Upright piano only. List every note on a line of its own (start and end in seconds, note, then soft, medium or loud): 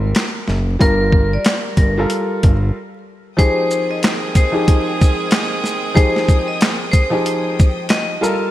0.00 0.55 G3 medium
0.00 0.55 F4 medium
0.00 0.55 A4 medium
0.00 0.56 A#4 loud
0.79 1.85 G3 loud
0.79 1.86 F4 medium
0.79 1.86 G4 medium
0.79 1.86 A#4 loud
1.97 2.75 G3 medium
1.97 2.75 F4 medium
1.97 2.75 A4 medium
1.97 2.75 A#4 loud
3.37 4.43 F3 loud
3.37 4.43 D#4 medium
3.37 4.44 G4 medium
3.37 4.44 G#4 loud
4.52 5.70 F3 medium
4.52 5.70 D#4 medium
4.52 5.71 G4 medium
4.52 5.71 G#4 loud
5.94 7.01 F3 medium
5.94 7.01 D#4 medium
5.94 7.02 G4 medium
5.94 7.02 G#4 loud
7.10 8.14 F3 medium
7.10 8.14 D#4 medium
7.10 8.15 G4 medium
7.10 8.15 G#4 loud
8.21 8.51 G3 medium
8.21 8.51 F4 medium
8.21 8.51 A4 medium
8.21 8.51 A#4 loud